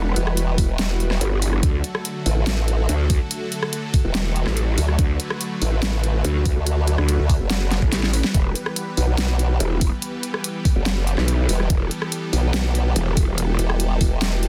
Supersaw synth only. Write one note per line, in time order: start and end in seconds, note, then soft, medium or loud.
0.00 1.59 E3 medium
0.00 1.59 G3 medium
0.00 1.59 B3 medium
0.00 8.30 F#4 medium
0.00 1.59 B4 medium
1.63 8.30 D3 medium
1.63 8.30 F#3 medium
1.63 8.30 A3 medium
1.63 4.95 A4 medium
4.99 11.66 B4 medium
8.35 14.48 E3 medium
8.35 14.48 G3 medium
8.35 14.48 B3 medium
8.35 14.48 G4 medium
11.70 14.48 A4 medium